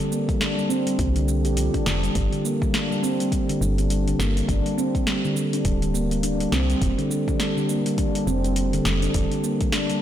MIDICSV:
0, 0, Header, 1, 4, 480
1, 0, Start_track
1, 0, Key_signature, -2, "minor"
1, 0, Tempo, 582524
1, 1777, Time_signature, 4, 2, 24, 8
1, 8255, End_track
2, 0, Start_track
2, 0, Title_t, "Handpan"
2, 0, Program_c, 0, 114
2, 0, Note_on_c, 0, 50, 74
2, 86, Note_off_c, 0, 50, 0
2, 93, Note_on_c, 0, 58, 66
2, 222, Note_off_c, 0, 58, 0
2, 233, Note_on_c, 0, 55, 74
2, 324, Note_off_c, 0, 55, 0
2, 332, Note_on_c, 0, 62, 81
2, 469, Note_off_c, 0, 62, 0
2, 472, Note_on_c, 0, 55, 69
2, 531, Note_off_c, 0, 55, 0
2, 573, Note_on_c, 0, 60, 90
2, 655, Note_off_c, 0, 60, 0
2, 715, Note_on_c, 0, 55, 74
2, 804, Note_off_c, 0, 55, 0
2, 814, Note_on_c, 0, 55, 75
2, 942, Note_off_c, 0, 55, 0
2, 955, Note_on_c, 0, 50, 87
2, 1043, Note_off_c, 0, 50, 0
2, 1052, Note_on_c, 0, 50, 72
2, 1182, Note_off_c, 0, 50, 0
2, 1194, Note_on_c, 0, 67, 73
2, 1289, Note_off_c, 0, 67, 0
2, 1294, Note_on_c, 0, 53, 79
2, 1422, Note_off_c, 0, 53, 0
2, 1432, Note_on_c, 0, 62, 88
2, 1528, Note_off_c, 0, 62, 0
2, 1532, Note_on_c, 0, 50, 70
2, 1669, Note_off_c, 0, 50, 0
2, 1676, Note_on_c, 0, 55, 71
2, 1766, Note_off_c, 0, 55, 0
2, 1776, Note_on_c, 0, 55, 74
2, 1910, Note_off_c, 0, 55, 0
2, 1917, Note_on_c, 0, 50, 68
2, 2006, Note_off_c, 0, 50, 0
2, 2017, Note_on_c, 0, 58, 73
2, 2144, Note_off_c, 0, 58, 0
2, 2158, Note_on_c, 0, 55, 74
2, 2247, Note_off_c, 0, 55, 0
2, 2257, Note_on_c, 0, 62, 80
2, 2391, Note_off_c, 0, 62, 0
2, 2397, Note_on_c, 0, 55, 74
2, 2454, Note_off_c, 0, 55, 0
2, 2497, Note_on_c, 0, 60, 90
2, 2577, Note_off_c, 0, 60, 0
2, 2638, Note_on_c, 0, 55, 71
2, 2725, Note_off_c, 0, 55, 0
2, 2735, Note_on_c, 0, 55, 83
2, 2863, Note_off_c, 0, 55, 0
2, 2878, Note_on_c, 0, 50, 84
2, 2966, Note_off_c, 0, 50, 0
2, 2975, Note_on_c, 0, 55, 71
2, 3110, Note_off_c, 0, 55, 0
2, 3116, Note_on_c, 0, 62, 68
2, 3211, Note_off_c, 0, 62, 0
2, 3217, Note_on_c, 0, 55, 71
2, 3351, Note_off_c, 0, 55, 0
2, 3357, Note_on_c, 0, 50, 73
2, 3446, Note_off_c, 0, 50, 0
2, 3455, Note_on_c, 0, 58, 70
2, 3583, Note_off_c, 0, 58, 0
2, 3599, Note_on_c, 0, 55, 69
2, 3687, Note_off_c, 0, 55, 0
2, 3699, Note_on_c, 0, 62, 79
2, 3832, Note_off_c, 0, 62, 0
2, 3839, Note_on_c, 0, 55, 71
2, 3894, Note_off_c, 0, 55, 0
2, 3936, Note_on_c, 0, 60, 87
2, 4017, Note_off_c, 0, 60, 0
2, 4078, Note_on_c, 0, 55, 74
2, 4168, Note_off_c, 0, 55, 0
2, 4178, Note_on_c, 0, 55, 84
2, 4304, Note_off_c, 0, 55, 0
2, 4320, Note_on_c, 0, 50, 91
2, 4407, Note_off_c, 0, 50, 0
2, 4419, Note_on_c, 0, 55, 67
2, 4552, Note_off_c, 0, 55, 0
2, 4559, Note_on_c, 0, 62, 74
2, 4652, Note_off_c, 0, 62, 0
2, 4656, Note_on_c, 0, 55, 79
2, 4791, Note_off_c, 0, 55, 0
2, 4797, Note_on_c, 0, 50, 68
2, 4886, Note_off_c, 0, 50, 0
2, 4895, Note_on_c, 0, 58, 72
2, 5023, Note_off_c, 0, 58, 0
2, 5037, Note_on_c, 0, 55, 69
2, 5126, Note_off_c, 0, 55, 0
2, 5136, Note_on_c, 0, 62, 74
2, 5271, Note_off_c, 0, 62, 0
2, 5277, Note_on_c, 0, 55, 76
2, 5333, Note_off_c, 0, 55, 0
2, 5373, Note_on_c, 0, 60, 97
2, 5455, Note_off_c, 0, 60, 0
2, 5517, Note_on_c, 0, 55, 75
2, 5604, Note_off_c, 0, 55, 0
2, 5614, Note_on_c, 0, 55, 78
2, 5742, Note_off_c, 0, 55, 0
2, 5754, Note_on_c, 0, 50, 95
2, 5845, Note_off_c, 0, 50, 0
2, 5856, Note_on_c, 0, 55, 70
2, 5991, Note_off_c, 0, 55, 0
2, 5997, Note_on_c, 0, 62, 73
2, 6091, Note_off_c, 0, 62, 0
2, 6095, Note_on_c, 0, 55, 85
2, 6230, Note_off_c, 0, 55, 0
2, 6236, Note_on_c, 0, 50, 74
2, 6325, Note_off_c, 0, 50, 0
2, 6336, Note_on_c, 0, 58, 70
2, 6463, Note_off_c, 0, 58, 0
2, 6477, Note_on_c, 0, 55, 81
2, 6566, Note_off_c, 0, 55, 0
2, 6576, Note_on_c, 0, 62, 78
2, 6710, Note_off_c, 0, 62, 0
2, 6717, Note_on_c, 0, 55, 66
2, 6774, Note_off_c, 0, 55, 0
2, 6815, Note_on_c, 0, 60, 96
2, 6896, Note_off_c, 0, 60, 0
2, 6959, Note_on_c, 0, 55, 70
2, 7045, Note_off_c, 0, 55, 0
2, 7055, Note_on_c, 0, 55, 75
2, 7183, Note_off_c, 0, 55, 0
2, 7195, Note_on_c, 0, 50, 95
2, 7285, Note_off_c, 0, 50, 0
2, 7297, Note_on_c, 0, 55, 70
2, 7431, Note_off_c, 0, 55, 0
2, 7437, Note_on_c, 0, 62, 72
2, 7531, Note_off_c, 0, 62, 0
2, 7537, Note_on_c, 0, 55, 77
2, 7671, Note_off_c, 0, 55, 0
2, 7679, Note_on_c, 0, 50, 70
2, 7767, Note_off_c, 0, 50, 0
2, 7776, Note_on_c, 0, 58, 68
2, 7904, Note_off_c, 0, 58, 0
2, 7918, Note_on_c, 0, 55, 67
2, 8006, Note_off_c, 0, 55, 0
2, 8016, Note_on_c, 0, 62, 86
2, 8151, Note_off_c, 0, 62, 0
2, 8157, Note_on_c, 0, 55, 69
2, 8214, Note_off_c, 0, 55, 0
2, 8255, End_track
3, 0, Start_track
3, 0, Title_t, "FM bass"
3, 0, Program_c, 1, 39
3, 816, Note_on_c, 1, 36, 73
3, 1198, Note_on_c, 1, 34, 81
3, 1210, Note_off_c, 1, 36, 0
3, 1296, Note_on_c, 1, 36, 99
3, 1309, Note_off_c, 1, 34, 0
3, 1400, Note_off_c, 1, 36, 0
3, 1538, Note_on_c, 1, 29, 97
3, 1725, Note_off_c, 1, 29, 0
3, 1776, Note_on_c, 1, 31, 100
3, 1880, Note_off_c, 1, 31, 0
3, 2978, Note_on_c, 1, 31, 92
3, 3415, Note_off_c, 1, 31, 0
3, 3455, Note_on_c, 1, 31, 86
3, 3643, Note_off_c, 1, 31, 0
3, 3697, Note_on_c, 1, 31, 101
3, 3801, Note_off_c, 1, 31, 0
3, 4656, Note_on_c, 1, 26, 73
3, 5334, Note_off_c, 1, 26, 0
3, 5376, Note_on_c, 1, 36, 88
3, 5564, Note_off_c, 1, 36, 0
3, 5617, Note_on_c, 1, 29, 99
3, 5721, Note_off_c, 1, 29, 0
3, 6815, Note_on_c, 1, 29, 87
3, 7254, Note_off_c, 1, 29, 0
3, 7296, Note_on_c, 1, 29, 81
3, 7484, Note_off_c, 1, 29, 0
3, 7536, Note_on_c, 1, 29, 95
3, 7640, Note_off_c, 1, 29, 0
3, 8255, End_track
4, 0, Start_track
4, 0, Title_t, "Drums"
4, 3, Note_on_c, 9, 82, 21
4, 85, Note_off_c, 9, 82, 0
4, 100, Note_on_c, 9, 82, 74
4, 183, Note_off_c, 9, 82, 0
4, 237, Note_on_c, 9, 36, 102
4, 238, Note_on_c, 9, 46, 27
4, 243, Note_on_c, 9, 82, 33
4, 320, Note_off_c, 9, 36, 0
4, 320, Note_off_c, 9, 46, 0
4, 326, Note_off_c, 9, 82, 0
4, 336, Note_on_c, 9, 38, 70
4, 336, Note_on_c, 9, 46, 56
4, 342, Note_on_c, 9, 82, 42
4, 419, Note_off_c, 9, 38, 0
4, 419, Note_off_c, 9, 46, 0
4, 425, Note_off_c, 9, 82, 0
4, 483, Note_on_c, 9, 82, 21
4, 565, Note_off_c, 9, 82, 0
4, 579, Note_on_c, 9, 82, 75
4, 662, Note_off_c, 9, 82, 0
4, 715, Note_on_c, 9, 46, 40
4, 721, Note_on_c, 9, 82, 30
4, 798, Note_off_c, 9, 46, 0
4, 803, Note_off_c, 9, 82, 0
4, 815, Note_on_c, 9, 46, 63
4, 816, Note_on_c, 9, 36, 97
4, 820, Note_on_c, 9, 82, 42
4, 897, Note_off_c, 9, 46, 0
4, 898, Note_off_c, 9, 36, 0
4, 903, Note_off_c, 9, 82, 0
4, 954, Note_on_c, 9, 46, 41
4, 960, Note_on_c, 9, 82, 21
4, 1036, Note_off_c, 9, 46, 0
4, 1042, Note_off_c, 9, 82, 0
4, 1057, Note_on_c, 9, 82, 71
4, 1139, Note_off_c, 9, 82, 0
4, 1193, Note_on_c, 9, 46, 28
4, 1199, Note_on_c, 9, 82, 32
4, 1275, Note_off_c, 9, 46, 0
4, 1281, Note_off_c, 9, 82, 0
4, 1293, Note_on_c, 9, 46, 58
4, 1299, Note_on_c, 9, 82, 43
4, 1375, Note_off_c, 9, 46, 0
4, 1381, Note_off_c, 9, 82, 0
4, 1436, Note_on_c, 9, 46, 28
4, 1437, Note_on_c, 9, 36, 61
4, 1442, Note_on_c, 9, 82, 21
4, 1518, Note_off_c, 9, 46, 0
4, 1519, Note_off_c, 9, 36, 0
4, 1524, Note_off_c, 9, 82, 0
4, 1534, Note_on_c, 9, 38, 69
4, 1540, Note_on_c, 9, 82, 74
4, 1617, Note_off_c, 9, 38, 0
4, 1622, Note_off_c, 9, 82, 0
4, 1677, Note_on_c, 9, 46, 27
4, 1682, Note_on_c, 9, 82, 33
4, 1759, Note_off_c, 9, 46, 0
4, 1765, Note_off_c, 9, 82, 0
4, 1774, Note_on_c, 9, 46, 58
4, 1776, Note_on_c, 9, 36, 108
4, 1780, Note_on_c, 9, 82, 42
4, 1856, Note_off_c, 9, 46, 0
4, 1858, Note_off_c, 9, 36, 0
4, 1862, Note_off_c, 9, 82, 0
4, 1916, Note_on_c, 9, 46, 27
4, 1922, Note_on_c, 9, 82, 20
4, 1998, Note_off_c, 9, 46, 0
4, 2004, Note_off_c, 9, 82, 0
4, 2020, Note_on_c, 9, 82, 80
4, 2103, Note_off_c, 9, 82, 0
4, 2157, Note_on_c, 9, 36, 100
4, 2163, Note_on_c, 9, 82, 33
4, 2240, Note_off_c, 9, 36, 0
4, 2246, Note_off_c, 9, 82, 0
4, 2257, Note_on_c, 9, 38, 70
4, 2257, Note_on_c, 9, 46, 58
4, 2263, Note_on_c, 9, 82, 42
4, 2340, Note_off_c, 9, 38, 0
4, 2340, Note_off_c, 9, 46, 0
4, 2346, Note_off_c, 9, 82, 0
4, 2406, Note_on_c, 9, 82, 20
4, 2488, Note_off_c, 9, 82, 0
4, 2503, Note_on_c, 9, 82, 71
4, 2585, Note_off_c, 9, 82, 0
4, 2639, Note_on_c, 9, 46, 38
4, 2645, Note_on_c, 9, 82, 31
4, 2722, Note_off_c, 9, 46, 0
4, 2727, Note_off_c, 9, 82, 0
4, 2736, Note_on_c, 9, 36, 94
4, 2737, Note_on_c, 9, 46, 59
4, 2743, Note_on_c, 9, 82, 42
4, 2818, Note_off_c, 9, 36, 0
4, 2819, Note_off_c, 9, 46, 0
4, 2825, Note_off_c, 9, 82, 0
4, 2879, Note_on_c, 9, 46, 42
4, 2885, Note_on_c, 9, 82, 20
4, 2962, Note_off_c, 9, 46, 0
4, 2967, Note_off_c, 9, 82, 0
4, 2983, Note_on_c, 9, 82, 75
4, 3066, Note_off_c, 9, 82, 0
4, 3118, Note_on_c, 9, 46, 28
4, 3124, Note_on_c, 9, 82, 31
4, 3200, Note_off_c, 9, 46, 0
4, 3206, Note_off_c, 9, 82, 0
4, 3216, Note_on_c, 9, 46, 58
4, 3222, Note_on_c, 9, 82, 41
4, 3299, Note_off_c, 9, 46, 0
4, 3304, Note_off_c, 9, 82, 0
4, 3358, Note_on_c, 9, 46, 28
4, 3364, Note_on_c, 9, 82, 22
4, 3441, Note_off_c, 9, 46, 0
4, 3447, Note_off_c, 9, 82, 0
4, 3458, Note_on_c, 9, 38, 66
4, 3464, Note_on_c, 9, 82, 74
4, 3540, Note_off_c, 9, 38, 0
4, 3546, Note_off_c, 9, 82, 0
4, 3601, Note_on_c, 9, 46, 28
4, 3606, Note_on_c, 9, 82, 30
4, 3683, Note_off_c, 9, 46, 0
4, 3689, Note_off_c, 9, 82, 0
4, 3696, Note_on_c, 9, 36, 98
4, 3699, Note_on_c, 9, 46, 58
4, 3704, Note_on_c, 9, 82, 41
4, 3778, Note_off_c, 9, 36, 0
4, 3781, Note_off_c, 9, 46, 0
4, 3787, Note_off_c, 9, 82, 0
4, 3839, Note_on_c, 9, 46, 29
4, 3845, Note_on_c, 9, 82, 18
4, 3922, Note_off_c, 9, 46, 0
4, 3928, Note_off_c, 9, 82, 0
4, 3942, Note_on_c, 9, 82, 74
4, 4025, Note_off_c, 9, 82, 0
4, 4077, Note_on_c, 9, 36, 94
4, 4079, Note_on_c, 9, 46, 27
4, 4085, Note_on_c, 9, 82, 29
4, 4160, Note_off_c, 9, 36, 0
4, 4161, Note_off_c, 9, 46, 0
4, 4167, Note_off_c, 9, 82, 0
4, 4176, Note_on_c, 9, 38, 68
4, 4176, Note_on_c, 9, 46, 63
4, 4182, Note_on_c, 9, 82, 40
4, 4259, Note_off_c, 9, 38, 0
4, 4259, Note_off_c, 9, 46, 0
4, 4265, Note_off_c, 9, 82, 0
4, 4323, Note_on_c, 9, 82, 19
4, 4406, Note_off_c, 9, 82, 0
4, 4422, Note_on_c, 9, 82, 65
4, 4505, Note_off_c, 9, 82, 0
4, 4558, Note_on_c, 9, 46, 41
4, 4564, Note_on_c, 9, 82, 30
4, 4641, Note_off_c, 9, 46, 0
4, 4647, Note_off_c, 9, 82, 0
4, 4654, Note_on_c, 9, 46, 58
4, 4656, Note_on_c, 9, 36, 93
4, 4660, Note_on_c, 9, 82, 39
4, 4737, Note_off_c, 9, 46, 0
4, 4738, Note_off_c, 9, 36, 0
4, 4742, Note_off_c, 9, 82, 0
4, 4797, Note_on_c, 9, 46, 39
4, 4803, Note_on_c, 9, 82, 19
4, 4880, Note_off_c, 9, 46, 0
4, 4886, Note_off_c, 9, 82, 0
4, 4902, Note_on_c, 9, 82, 72
4, 4984, Note_off_c, 9, 82, 0
4, 5037, Note_on_c, 9, 46, 26
4, 5043, Note_on_c, 9, 82, 28
4, 5120, Note_off_c, 9, 46, 0
4, 5126, Note_off_c, 9, 82, 0
4, 5135, Note_on_c, 9, 46, 65
4, 5141, Note_on_c, 9, 82, 41
4, 5218, Note_off_c, 9, 46, 0
4, 5224, Note_off_c, 9, 82, 0
4, 5277, Note_on_c, 9, 46, 31
4, 5283, Note_on_c, 9, 82, 20
4, 5360, Note_off_c, 9, 46, 0
4, 5365, Note_off_c, 9, 82, 0
4, 5375, Note_on_c, 9, 38, 66
4, 5381, Note_on_c, 9, 82, 66
4, 5457, Note_off_c, 9, 38, 0
4, 5463, Note_off_c, 9, 82, 0
4, 5518, Note_on_c, 9, 46, 27
4, 5524, Note_on_c, 9, 82, 29
4, 5600, Note_off_c, 9, 46, 0
4, 5606, Note_off_c, 9, 82, 0
4, 5616, Note_on_c, 9, 36, 101
4, 5616, Note_on_c, 9, 46, 62
4, 5622, Note_on_c, 9, 82, 41
4, 5698, Note_off_c, 9, 36, 0
4, 5698, Note_off_c, 9, 46, 0
4, 5704, Note_off_c, 9, 82, 0
4, 5757, Note_on_c, 9, 46, 29
4, 5762, Note_on_c, 9, 82, 19
4, 5839, Note_off_c, 9, 46, 0
4, 5845, Note_off_c, 9, 82, 0
4, 5859, Note_on_c, 9, 82, 71
4, 5942, Note_off_c, 9, 82, 0
4, 5997, Note_on_c, 9, 36, 92
4, 6001, Note_on_c, 9, 82, 30
4, 6080, Note_off_c, 9, 36, 0
4, 6083, Note_off_c, 9, 82, 0
4, 6095, Note_on_c, 9, 38, 69
4, 6095, Note_on_c, 9, 46, 66
4, 6101, Note_on_c, 9, 82, 39
4, 6177, Note_off_c, 9, 38, 0
4, 6177, Note_off_c, 9, 46, 0
4, 6183, Note_off_c, 9, 82, 0
4, 6241, Note_on_c, 9, 82, 19
4, 6324, Note_off_c, 9, 82, 0
4, 6339, Note_on_c, 9, 82, 71
4, 6421, Note_off_c, 9, 82, 0
4, 6477, Note_on_c, 9, 46, 43
4, 6483, Note_on_c, 9, 82, 31
4, 6559, Note_off_c, 9, 46, 0
4, 6565, Note_off_c, 9, 82, 0
4, 6575, Note_on_c, 9, 36, 94
4, 6575, Note_on_c, 9, 46, 65
4, 6581, Note_on_c, 9, 82, 38
4, 6658, Note_off_c, 9, 36, 0
4, 6658, Note_off_c, 9, 46, 0
4, 6663, Note_off_c, 9, 82, 0
4, 6718, Note_on_c, 9, 46, 42
4, 6723, Note_on_c, 9, 82, 20
4, 6800, Note_off_c, 9, 46, 0
4, 6806, Note_off_c, 9, 82, 0
4, 6820, Note_on_c, 9, 82, 67
4, 6903, Note_off_c, 9, 82, 0
4, 6958, Note_on_c, 9, 46, 30
4, 6964, Note_on_c, 9, 82, 28
4, 7041, Note_off_c, 9, 46, 0
4, 7047, Note_off_c, 9, 82, 0
4, 7054, Note_on_c, 9, 46, 62
4, 7060, Note_on_c, 9, 82, 40
4, 7137, Note_off_c, 9, 46, 0
4, 7143, Note_off_c, 9, 82, 0
4, 7196, Note_on_c, 9, 46, 30
4, 7202, Note_on_c, 9, 82, 19
4, 7278, Note_off_c, 9, 46, 0
4, 7284, Note_off_c, 9, 82, 0
4, 7294, Note_on_c, 9, 38, 70
4, 7299, Note_on_c, 9, 82, 68
4, 7376, Note_off_c, 9, 38, 0
4, 7382, Note_off_c, 9, 82, 0
4, 7435, Note_on_c, 9, 46, 31
4, 7441, Note_on_c, 9, 82, 29
4, 7517, Note_off_c, 9, 46, 0
4, 7523, Note_off_c, 9, 82, 0
4, 7534, Note_on_c, 9, 46, 65
4, 7536, Note_on_c, 9, 36, 103
4, 7540, Note_on_c, 9, 82, 41
4, 7616, Note_off_c, 9, 46, 0
4, 7618, Note_off_c, 9, 36, 0
4, 7622, Note_off_c, 9, 82, 0
4, 7676, Note_on_c, 9, 46, 30
4, 7682, Note_on_c, 9, 82, 19
4, 7758, Note_off_c, 9, 46, 0
4, 7764, Note_off_c, 9, 82, 0
4, 7777, Note_on_c, 9, 82, 74
4, 7860, Note_off_c, 9, 82, 0
4, 7915, Note_on_c, 9, 46, 32
4, 7918, Note_on_c, 9, 36, 98
4, 7921, Note_on_c, 9, 82, 29
4, 7998, Note_off_c, 9, 46, 0
4, 8000, Note_off_c, 9, 36, 0
4, 8003, Note_off_c, 9, 82, 0
4, 8013, Note_on_c, 9, 38, 71
4, 8013, Note_on_c, 9, 46, 70
4, 8019, Note_on_c, 9, 82, 41
4, 8095, Note_off_c, 9, 38, 0
4, 8095, Note_off_c, 9, 46, 0
4, 8101, Note_off_c, 9, 82, 0
4, 8154, Note_on_c, 9, 46, 31
4, 8160, Note_on_c, 9, 82, 21
4, 8236, Note_off_c, 9, 46, 0
4, 8242, Note_off_c, 9, 82, 0
4, 8255, End_track
0, 0, End_of_file